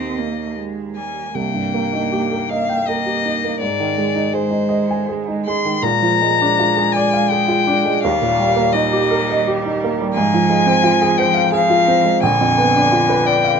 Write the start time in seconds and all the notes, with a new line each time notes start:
Already playing: D#2 A#3 C4 D#4 G4 D#5
0.18 A#3
0.56 G#3
0.96 G3 G#5
1.35 C2 A#3 G5
1.54 G2
1.74 A#3
1.93 D#4
2.12 G4
2.32 A#4
2.49 D#5 F5
2.69 G5
2.87 A#3 A#4 D#5
3.06 G4
3.25 D#4
3.44 A#3
3.60 G#2 G#3 D5
3.80 D#3
3.98 G#3
4.16 D#4
4.33 G#3 G#4 C5
4.51 D#4
4.69 D#5
4.91 G#5
5.09 G#4
5.28 D#4
5.46 G#3 C6
5.65 D#3
5.83 A#2 G#3 A#5
6.02 F3
6.21 G#3
6.42 D4
6.59 F4
6.77 G#4
6.92 G#5
6.96 D5
7.13 F5
7.30 G#4 G5
7.48 F4
7.67 D4
7.85 G#3
8.03 D#2 G3 F5
8.22 A#2
8.39 G3
8.56 A#3
8.73 G3 D#4 D#5
8.93 G4
9.11 A#4
9.31 D#5
9.47 G4
9.66 D#4
9.84 A#3
10.01 G3
10.14 G#2 F3 G#5
10.34 F3
10.50 G#3
10.66 C4
10.84 F4
11.02 G#4
11.18 C5 G5
11.34 F5
11.52 F3 G#4 F5
11.70 F4
11.88 C4
12.05 G#3
12.23 A#1 D3 G#5
12.41 F2
12.58 B3
12.76 D4
12.92 F4
13.10 B4
13.26 D5 G5
13.44 F5